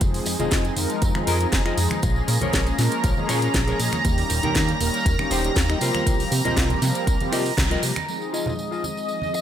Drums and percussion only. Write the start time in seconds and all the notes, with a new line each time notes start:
0.01 kick, closed hi-hat, tambourine
0.14 open hi-hat, tambourine
0.26 open hi-hat, tambourine
0.40 closed hi-hat, tambourine, high conga, low conga
0.51 kick, snare, closed hi-hat, tambourine
0.65 closed hi-hat, tambourine
0.77 open hi-hat, tambourine, high conga
0.90 closed hi-hat, tambourine
1.02 kick, closed hi-hat, tambourine
1.15 finger snap, tambourine, high conga
1.27 open hi-hat, tambourine
1.40 closed hi-hat, tambourine
1.52 kick, snare, closed hi-hat, tambourine, high conga
1.66 finger snap, closed hi-hat, tambourine
1.77 open hi-hat, tambourine
1.91 finger snap, closed hi-hat, tambourine, high conga
2.02 kick, closed hi-hat, tambourine
2.16 tambourine
2.28 open hi-hat, tambourine
2.41 closed hi-hat, tambourine, high conga, low conga
2.53 kick, snare, closed hi-hat, tambourine
2.67 closed hi-hat, tambourine
2.78 snare, open hi-hat, tambourine
2.91 closed hi-hat, tambourine
3.04 kick, closed hi-hat, tambourine
3.17 tambourine, high conga
3.29 finger snap, open hi-hat, tambourine
3.42 closed hi-hat, tambourine
3.54 kick, snare, closed hi-hat, tambourine, high conga
3.68 closed hi-hat, tambourine
3.80 open hi-hat, tambourine
3.93 finger snap, closed hi-hat, tambourine, high conga
4.05 kick, closed hi-hat, tambourine
4.18 open hi-hat, tambourine
4.30 open hi-hat, tambourine
4.43 closed hi-hat, tambourine, high conga, low conga
4.55 kick, snare, closed hi-hat, tambourine
4.68 closed hi-hat, tambourine
4.80 open hi-hat, tambourine, high conga
4.94 closed hi-hat, tambourine
5.06 kick, closed hi-hat, tambourine
5.19 finger snap, tambourine, high conga
5.31 open hi-hat, tambourine
5.44 closed hi-hat, tambourine
5.56 kick, snare, closed hi-hat, tambourine, high conga
5.69 finger snap, closed hi-hat, tambourine
5.81 open hi-hat, tambourine
5.94 finger snap, closed hi-hat, tambourine, high conga
6.07 kick, closed hi-hat, tambourine
6.20 open hi-hat, tambourine
6.32 open hi-hat, tambourine
6.45 closed hi-hat, tambourine, high conga, low conga
6.57 kick, snare, closed hi-hat, tambourine
6.70 closed hi-hat, tambourine, low conga
6.82 snare, open hi-hat, tambourine
6.95 closed hi-hat, tambourine
7.07 kick, closed hi-hat, tambourine
7.20 closed hi-hat, tambourine, high conga
7.32 finger snap, open hi-hat, tambourine
7.45 open hi-hat, tambourine
7.57 kick, snare, closed hi-hat, tambourine, high conga
7.71 closed hi-hat, tambourine
7.83 open hi-hat, tambourine
7.96 finger snap, closed hi-hat, tambourine, high conga
8.08 tambourine
8.22 tambourine
8.34 tambourine
8.46 tambourine, high conga, low conga
8.59 tambourine
8.72 tambourine
8.84 tambourine, high conga
8.97 tambourine
9.08 tambourine
9.22 tambourine, high conga
9.34 tambourine